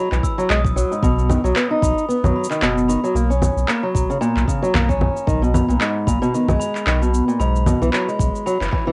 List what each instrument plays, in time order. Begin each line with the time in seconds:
Already playing: steel-string acoustic guitar F#3, glockenspiel B5
0.12 sub bass B1, steel-string acoustic guitar E3, clap, cabasa
0.23 glockenspiel E6, kick, cabasa
0.38 steel-string acoustic guitar F#3, cabasa
0.50 sub bass B1, steel-string acoustic guitar G#3, glockenspiel D#6, clap, cabasa
0.65 kick, cabasa
0.76 steel-string acoustic guitar F#3, cabasa
0.91 steel-string acoustic guitar G#2, cabasa
1.03 sub bass B1, steel-string acoustic guitar B2, glockenspiel B5, kick, cabasa
1.19 cabasa
1.29 steel-string acoustic guitar D#3, low conga, cabasa
1.44 sub bass B1, steel-string acoustic guitar F#3, cabasa
1.56 steel-string acoustic guitar B3, clap, cabasa
1.71 steel-string acoustic guitar D#4
1.82 sub bass B1, glockenspiel B5, kick, cabasa
1.98 cabasa
2.08 steel-string acoustic guitar B3, cabasa
2.23 sub bass B1, steel-string acoustic guitar F#3, low conga, cabasa
2.36 glockenspiel B5
2.44 cabasa
2.50 steel-string acoustic guitar D#3, clap, cabasa
2.62 sub bass F#1, steel-string acoustic guitar B2, clap, cabasa
2.78 cabasa
2.88 steel-string acoustic guitar D#3, glockenspiel B5, cabasa
3.04 steel-string acoustic guitar F#3, cabasa
3.15 sub bass B1, steel-string acoustic guitar A#3, cabasa
3.30 steel-string acoustic guitar C#4, cabasa
3.42 low conga, cabasa
3.56 sub bass B1, cabasa
3.68 steel-string acoustic guitar A#3, glockenspiel A#5, clap, cabasa
3.83 steel-string acoustic guitar F#3
3.95 sub bass B1, kick, cabasa
4.10 steel-string acoustic guitar C#3, cabasa
4.21 steel-string acoustic guitar A#2, glockenspiel A#5, cabasa
4.36 sub bass B1, clap, cabasa
4.48 steel-string acoustic guitar C#3, kick, cabasa
4.63 steel-string acoustic guitar F#3, cabasa
4.74 sub bass B1, steel-string acoustic guitar A#3, glockenspiel A#5, clap, low conga, cabasa
4.89 steel-string acoustic guitar C#4, kick, cabasa
5.01 low conga
5.17 cabasa
5.27 sub bass B1, steel-string acoustic guitar D#3, kick, cabasa
5.42 steel-string acoustic guitar B2, cabasa
5.54 glockenspiel B5, low conga, cabasa
5.68 sub bass B1, steel-string acoustic guitar A#2, cabasa
5.80 steel-string acoustic guitar G#2, clap, cabasa
6.07 sub bass B1, steel-string acoustic guitar A#2, glockenspiel B5, kick, cabasa
6.22 steel-string acoustic guitar B2, cabasa
6.34 steel-string acoustic guitar D#3, cabasa
6.48 sub bass B1, steel-string acoustic guitar G#3, low conga, cabasa
6.60 glockenspiel B5, cabasa
6.75 clap, cabasa
6.86 sub bass B1, steel-string acoustic guitar D#3, clap, cabasa
7.01 steel-string acoustic guitar B2, cabasa
7.14 cabasa
7.28 steel-string acoustic guitar A#2, cabasa
7.40 sub bass B1, steel-string acoustic guitar G#2, glockenspiel B5, cabasa
7.56 cabasa
7.66 steel-string acoustic guitar B2, low conga, cabasa
7.81 sub bass B1, steel-string acoustic guitar E3, cabasa
7.93 steel-string acoustic guitar F#3, glockenspiel B5, clap, cabasa
8.08 steel-string acoustic guitar G#3, cabasa
8.19 sub bass B1, kick, cabasa
8.35 cabasa
8.46 steel-string acoustic guitar F#3, glockenspiel B5, cabasa
8.61 sub bass F#1, steel-string acoustic guitar E3, clap, cabasa
8.64 clap
8.67 clap
8.70 steel-string acoustic guitar E3, kick, clap
8.73 clap
8.77 clap
8.80 clap
8.84 steel-string acoustic guitar E3, clap